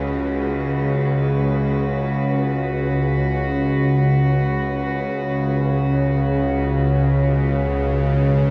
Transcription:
0.00 8.51 C#2 medium
0.00 6.28 C#3 medium
0.00 8.51 C#3 medium
0.00 6.28 G#3 medium
0.00 8.51 F#4 medium
0.00 8.51 B4 medium
6.31 8.51 C#2 medium
7.23 8.51 B2 medium

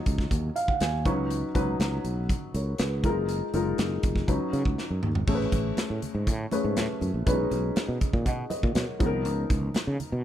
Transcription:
0.00 1.05 F#3 medium
0.00 1.06 D#4 medium
0.00 1.07 F4 medium
0.00 1.07 C#5 medium
0.00 1.07 D#5 soft
0.00 0.68 F#5 medium
0.06 0.24 C#2 medium
0.06 kick medium
0.06 closed hi-hat medium
0.18 kick medium
0.18 snare soft
0.31 0.49 D#2 medium
0.31 kick medium
0.31 closed hi-hat medium
0.56 0.67 F5 medium
0.56 closed hi-hat medium
0.68 0.80 F#5 medium
0.68 kick medium
0.80 1.06 D#2 medium
0.80 1.04 G#5 medium
0.80 snare loud
0.80 closed hi-hat medium
1.05 1.42 C#2 medium
1.05 1.45 F#3 medium
1.05 1.45 C#4 medium
1.05 1.45 D#4 medium
1.05 1.45 B4 medium
1.05 1.29 C#6 medium
1.05 kick loud
1.05 closed hi-hat medium
1.30 closed hi-hat medium
1.55 1.73 C#2 medium
1.55 2.19 F#3 medium
1.55 2.20 C#4 medium
1.55 2.20 D#4 medium
1.55 2.20 B4 loud
1.55 kick medium
1.55 closed hi-hat medium
1.79 1.98 C#2 medium
1.79 snare loud
1.79 closed hi-hat medium
2.04 2.32 B1 medium
2.04 closed hi-hat medium
2.29 kick medium
2.29 closed hi-hat medium
2.54 2.73 C#2 medium
2.54 2.79 A#4 medium
2.54 2.78 C#5 medium
2.54 closed hi-hat medium
2.78 3.05 C#2 medium
2.78 3.27 G#4 medium
2.78 3.26 B4 medium
2.78 snare loud
2.78 closed hi-hat medium
3.04 3.40 F#1 medium
3.04 3.44 G#3 medium
3.04 3.44 D#4 medium
3.04 3.44 F4 medium
3.04 3.44 A#4 medium
3.04 kick loud
3.04 closed hi-hat medium
3.29 closed hi-hat medium
3.54 3.72 F#1 medium
3.54 4.18 G#3 medium
3.54 4.18 D#4 medium
3.54 4.18 F4 medium
3.54 4.19 A#4 medium
3.54 closed hi-hat medium
3.78 3.97 F#1 medium
3.78 snare loud
3.78 closed hi-hat medium
4.03 4.22 F1 medium
4.03 kick medium
4.03 closed hi-hat medium
4.16 kick medium
4.16 snare soft
4.28 4.37 C#2 medium
4.28 5.08 F#3 medium
4.28 5.08 C#4 medium
4.28 5.08 D#4 medium
4.28 5.08 B4 medium
4.28 kick medium
4.28 closed hi-hat medium
4.53 4.62 C#3 medium
4.53 closed hi-hat medium
4.65 4.75 C#2 medium
4.65 kick medium
4.78 snare medium
4.90 5.00 F#2 medium
5.03 5.12 D#2 medium
5.03 mid tom medium
5.15 5.25 G#1 medium
5.15 floor tom medium
5.27 5.46 A1 loud
5.27 5.92 A3 medium
5.27 5.92 C#4 medium
5.27 5.92 G#4 medium
5.27 5.34 A4 medium
5.27 kick loud
5.27 crash medium
5.35 5.96 B4 medium
5.41 snare soft
5.52 5.71 A1 medium
5.52 kick medium
5.52 closed hi-hat medium
5.52 muted conga medium
5.77 muted fretless electric bass stroke soft
5.77 snare loud
5.77 closed hi-hat medium
5.77 high conga medium
5.90 5.99 A2 medium
6.02 closed hi-hat medium
6.02 low conga medium
6.15 6.27 G#2 medium
6.27 6.45 A2 medium
6.27 kick medium
6.27 closed hi-hat medium
6.27 muted conga soft
6.51 7.00 A3 medium
6.51 7.00 C#4 medium
6.51 7.00 G#4 medium
6.51 7.01 B4 medium
6.51 closed hi-hat medium
6.51 muted conga soft
6.64 6.77 G#2 medium
6.77 6.86 A2 loud
6.77 snare loud
6.77 closed hi-hat medium
6.77 high conga medium
7.01 7.11 F#2 medium
7.01 closed hi-hat medium
7.01 high conga medium
7.14 7.23 A#1 medium
7.26 7.45 B1 loud
7.26 7.91 G#3 medium
7.26 7.91 C#4 medium
7.26 7.33 D4 medium
7.26 7.91 B4 medium
7.26 kick loud
7.26 closed hi-hat medium
7.33 7.94 D#4 medium
7.51 7.69 B1 medium
7.51 closed hi-hat medium
7.51 muted conga medium
7.76 muted fretless electric bass stroke soft
7.76 snare loud
7.76 closed hi-hat medium
7.76 high conga medium
7.88 7.98 B2 medium
8.01 kick medium
8.01 closed hi-hat medium
8.01 low conga medium
8.13 8.26 A#2 medium
8.13 kick medium
8.26 8.44 B2 medium
8.26 8.48 D#5 soft
8.26 8.50 F#5 medium
8.26 kick medium
8.26 closed hi-hat medium
8.26 muted conga soft
8.50 8.74 B4 medium
8.50 8.74 D#5 medium
8.50 closed hi-hat medium
8.50 muted conga medium
8.63 8.72 A#2 medium
8.63 kick medium
8.75 8.85 B2 medium
8.75 9.05 A#4 medium
8.75 9.23 C#5 medium
8.75 snare loud
8.75 closed hi-hat medium
8.75 high conga medium
8.99 9.13 C#2 medium
8.99 9.79 F3 medium
8.99 9.80 B3 medium
8.99 9.80 D#4 medium
8.99 9.06 G#4 medium
8.99 kick loud
8.99 closed hi-hat medium
8.99 high conga medium
9.06 9.83 A#4 loud
9.13 9.25 C2 medium
9.25 9.44 C#2 loud
9.25 closed hi-hat medium
9.50 9.68 C#2 loud
9.50 kick medium
9.50 closed hi-hat medium
9.50 muted conga medium
9.74 muted fretless electric bass stroke soft
9.74 snare loud
9.74 closed hi-hat medium
9.74 high conga medium
9.87 9.96 C#3 loud
10.00 closed hi-hat medium
10.00 low conga medium
10.12 10.21 B2 medium

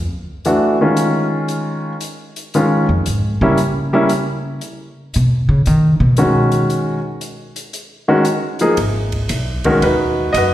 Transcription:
0.45 0.76 E3 medium
0.45 0.76 A3 medium
0.45 0.77 D4 soft
0.45 0.77 F#4 medium
0.45 closed hi-hat soft
0.81 1.91 D#3 medium
0.81 1.92 G#3 medium
0.81 1.92 C#4 medium
0.81 1.92 F4 medium
0.97 closed hi-hat medium
1.48 closed hi-hat soft
2.01 closed hi-hat medium
2.36 closed hi-hat soft
2.54 2.85 D#3 medium
2.54 2.85 G#3 medium
2.54 2.86 C#4 medium
2.54 2.86 F4 medium
2.54 closed hi-hat soft
2.89 3.05 F2 medium
3.06 3.40 G#2 medium
3.06 closed hi-hat medium
3.41 4.58 C#3 medium
3.41 3.56 G3 medium
3.41 3.57 A#3 medium
3.41 3.57 C#4 medium
3.41 3.57 E4 medium
3.57 closed hi-hat soft
3.93 4.08 G3 medium
3.93 4.08 A#3 medium
3.93 4.09 C#4 medium
3.93 4.08 E4 medium
4.09 closed hi-hat medium
4.61 closed hi-hat soft
5.14 5.48 B2 medium
5.14 closed hi-hat medium
5.49 5.65 C#3 medium
5.66 6.00 D#3 loud
5.66 closed hi-hat soft
6.00 6.66 B2 medium
6.17 6.97 D#3 medium
6.17 6.98 G#3 soft
6.17 6.97 C#4 medium
6.17 6.98 F#4 medium
6.17 closed hi-hat soft
6.52 closed hi-hat soft
6.70 closed hi-hat soft
7.21 closed hi-hat medium
7.56 closed hi-hat soft
7.73 closed hi-hat soft
8.08 8.24 D#3 medium
8.08 8.24 G#3 medium
8.08 8.24 C#4 medium
8.08 8.24 F#4 medium
8.25 closed hi-hat medium
8.59 8.76 F3 medium
8.59 8.76 A#3 medium
8.59 8.76 D#4 medium
8.59 8.77 G#4 medium
8.59 closed hi-hat soft
8.77 9.28 G#1 medium
8.77 kick soft
8.77 ride medium
9.12 kick medium
9.12 ride soft
9.29 9.80 B1 medium
9.29 kick soft
9.29 hi-hat pedal medium
9.29 ride medium
9.64 9.80 D#3 medium
9.64 9.81 G#3 medium
9.64 9.81 C#4 medium
9.64 9.81 F#4 medium
9.64 9.83 A#4 medium
9.64 kick medium
9.64 ride soft
9.82 10.33 D#2 medium
9.82 10.54 D#4 medium
9.82 10.36 F#4 medium
9.82 10.35 B4 medium
9.82 kick soft
9.82 ride medium
10.33 10.54 F#2 medium
10.33 10.54 D#5 medium
10.33 kick soft
10.33 hi-hat pedal medium
10.33 ride medium
10.37 10.54 F#4 medium
10.37 10.54 B4 medium

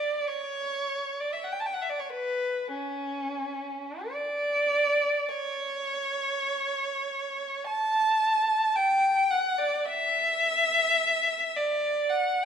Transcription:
0.00 0.28 D5 medium
0.28 1.19 C#5 medium
1.20 1.34 D5 medium
1.33 1.44 E5 soft
1.44 1.53 F#5 medium
1.52 1.60 G5 medium
1.60 1.68 A5 medium
1.66 1.74 G5 soft
1.74 1.82 F#5 medium
1.82 1.91 E5 medium
1.90 2.00 D5 medium
2.00 2.11 C#5 soft
2.10 2.73 B4 medium
2.73 4.08 C#4 medium
4.10 5.28 D5 medium
5.29 7.67 C#5 medium
7.67 8.75 A5 medium
8.76 9.30 G5 medium
9.31 9.58 F#5 medium
9.58 9.86 D5 medium
9.85 11.55 E5 medium
11.57 12.10 D5 medium
12.09 12.42 F#5 medium

